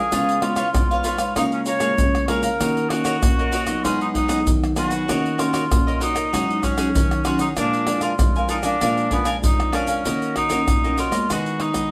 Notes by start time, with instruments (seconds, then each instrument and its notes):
Already playing: cor anglais G#4, cavaquinho A#4 F5
0.12 nylon-string guitar C#3 G#3 B3 F4, cavaquinho F4 B4 C#5 F5, pandeiro, tamborim, shaker, surdo
0.29 pandeiro, shaker
0.42 nylon-string guitar G#3 B3 F4, cor anglais F4, cavaquinho F4 B4 C#5 F5, pandeiro, tamborim
0.56 cavaquinho F4 B4 C#5 F5, pandeiro, tamborim, shaker
0.73 nylon-string guitar G#2 G#3 B3 F4, pandeiro, tamborim, shaker, surdo
0.91 cavaquinho B4 C#5 F5, pandeiro, shaker
1.04 cavaquinho F4 B4 C#5 F5, pandeiro, shaker
1.18 cavaquinho B4 C#5 F5, pandeiro, tamborim, shaker
1.36 nylon-string guitar C#3 G#3 A#3 F4, cor anglais D#4, cavaquinho G#4 C#5 F5 A#5, pandeiro, tamborim, shaker, surdo
1.52 cor anglais C#4, pandeiro, shaker
1.66 cavaquinho G#4 C#5 F5 A#5, cor anglais C#5, pandeiro, shaker
1.80 nylon-string guitar G#3 A#3 F4, cavaquinho G#4 C#5 F5 A#5, pandeiro, tamborim, shaker
1.98 nylon-string guitar C#3, pandeiro, shaker, surdo
2.15 pandeiro, tamborim, shaker
2.28 nylon-string guitar G#3 A#3 F4, cavaquinho G#4 C#5 F5 A#5, cor anglais A#4, pandeiro, tamborim
2.43 cavaquinho C#5 F5 A#5, pandeiro, shaker
2.60 nylon-string guitar D#3 A#3 C#4 F#4, cavaquinho F#4 A#4 C#5 D#5, pandeiro, tamborim, shaker, surdo
2.77 pandeiro, shaker
2.90 nylon-string guitar A#3 C#4 F#4, cor anglais F#4, cavaquinho F#4 A#4 C#5 D#5, pandeiro, tamborim
3.05 cavaquinho F#4 A#4 C#5 D#5, pandeiro, tamborim, shaker
3.22 nylon-string guitar A#2 A#3 C#4 F#4, pandeiro, tamborim, shaker, surdo
3.39 cavaquinho A#4 C#5 D#5, pandeiro, shaker
3.52 cavaquinho F#4 A#4 C#5 D#5, pandeiro, shaker
3.67 nylon-string guitar F#3 B3 D#4, cavaquinho A#4 C#5 D#5, pandeiro, tamborim, shaker
3.84 nylon-string guitar G#2, cavaquinho D#4 G#4 B4 F#5, cor anglais F4, pandeiro, tamborim, shaker, surdo
4.01 cor anglais D#4, pandeiro, shaker
4.14 cavaquinho D#4 G#4 B4 F#5, cor anglais D#4, pandeiro, surdo
4.28 nylon-string guitar F#3 B3 D#4, cavaquinho D#4 G#4 B4 F#5, pandeiro, tamborim, shaker
4.47 nylon-string guitar D#3, pandeiro, shaker, surdo
4.64 pandeiro, tamborim, shaker
4.76 nylon-string guitar F#3 B3 D#4, cavaquinho D#4 G#4 B4 F#5, cor anglais F#4, pandeiro, tamborim, shaker
4.90 cavaquinho G#4 B4 F#5, pandeiro, shaker
5.08 nylon-string guitar D#3 A#3 C#4 F#4, cavaquinho F#4 A#4 C#5 D#5, pandeiro, tamborim, shaker, surdo
5.26 pandeiro, shaker
5.38 nylon-string guitar A#3 C#4 F#4, cor anglais F4, cavaquinho F#4 A#4 C#5 D#5, pandeiro, tamborim, shaker
5.53 cavaquinho F#4 A#4 C#5 D#5, pandeiro, tamborim, shaker
5.70 nylon-string guitar A#2 A#3 C#4 F#4, pandeiro, tamborim, shaker, surdo
5.87 cavaquinho A#4 C#5 D#5, pandeiro, shaker
5.95 cor anglais F4
6.00 cor anglais D#4, cavaquinho F#4 A#4 C#5 D#5, pandeiro, shaker
6.14 cavaquinho A#4 C#5 D#5, pandeiro, tamborim, shaker
6.33 nylon-string guitar G#2 F#3 C#4 D#4, cavaquinho F#4 G#4 C#5 F#5, pandeiro, tamborim, shaker, surdo
6.50 pandeiro, shaker
6.63 cor anglais C#4, cavaquinho F#4 G#4 C#5 F#5, pandeiro, shaker, surdo
6.77 nylon-string guitar F#3 C#4 D#4, cavaquinho F#4 G#4 C#5 F#5, pandeiro, tamborim, shaker
6.95 nylon-string guitar D#3, pandeiro, shaker, surdo
7.11 pandeiro, tamborim, shaker
7.25 nylon-string guitar F#3 C#4 D#4, cor anglais F4, cavaquinho F#4 G#4 C#5 F#5, pandeiro, tamborim, shaker
7.39 cor anglais D#4, cavaquinho G#4 C#5 F#5, pandeiro, shaker
7.57 nylon-string guitar A#2 F3 G#3 D4, cavaquinho D4 A#4 F5 G#5, cor anglais D4, pandeiro, tamborim, shaker, surdo
7.73 pandeiro, shaker
7.87 nylon-string guitar F3 G#3 D4, cavaquinho D4 A#4 F5 G#5, pandeiro, tamborim
8.01 cavaquinho D4 A#4 F5 G#5, cor anglais F4, pandeiro, tamborim, shaker
8.19 nylon-string guitar F2 F3 G#3 D4, pandeiro, tamborim, shaker, surdo
8.36 cavaquinho A#4 F5 G#5, pandeiro, shaker
8.49 cavaquinho D4 A#4 F5 G#5, cor anglais D#4, pandeiro, shaker
8.63 nylon-string guitar F3 G#3 D4, cor anglais D4, cavaquinho A#4 F5 G#5, pandeiro, tamborim, shaker
8.81 nylon-string guitar A#2 F3 G#3 D4, cavaquinho D4 A#4 F5 G#5, pandeiro, tamborim, shaker, surdo
8.97 pandeiro, shaker
9.11 nylon-string guitar F3 G#3 D4, cor anglais B3, cavaquinho D4 A#4 F5 G#5, pandeiro, surdo
9.25 nylon-string guitar F3 G#3 D4, cavaquinho D4 A#4 F5 G#5, pandeiro, tamborim, shaker
9.44 nylon-string guitar F2, cor anglais D#4, pandeiro, shaker, surdo
9.60 pandeiro, tamborim, shaker
9.72 nylon-string guitar F3 G#3 D4, cor anglais C#4, cavaquinho D4 A#4 F5 G#5, pandeiro, tamborim
9.87 cavaquinho A#4 F5 G#5, pandeiro, shaker
10.05 nylon-string guitar D#3 A#3 C#4 F#4, cavaquinho F#4 A#4 C#5 D#5, pandeiro, shaker, surdo
10.22 pandeiro, shaker
10.36 cor anglais D#4, cavaquinho F#4 A#4 C#5 D#5, pandeiro, tamborim, surdo
10.49 nylon-string guitar A#3 C#4 F#4, cavaquinho F#4 A#4 C#5 D#5, pandeiro, tamborim, shaker, surdo
10.68 nylon-string guitar A#2, pandeiro, tamborim, shaker, surdo
10.84 nylon-string guitar A#3 C#4 F#4, cavaquinho A#4 C#5 D#5, pandeiro, shaker
10.97 cor anglais F4, cavaquinho F#4 A#4 C#5 D#5, pandeiro, shaker
11.11 nylon-string guitar G#3 B3 F#4, cavaquinho A#4 C#5 D#5, pandeiro, tamborim, shaker, surdo
11.30 nylon-string guitar D#3, cavaquinho D#4 G#4 B4 D#5, cor anglais F#4, pandeiro, tamborim, shaker, surdo
11.46 pandeiro, shaker
11.60 cavaquinho D#4 G#4 B4 D#5, cor anglais D#4, pandeiro, tamborim
11.74 nylon-string guitar G#3 B3 F#4, cavaquinho G#4 B4 D#5, pandeiro, tamborim, shaker, surdo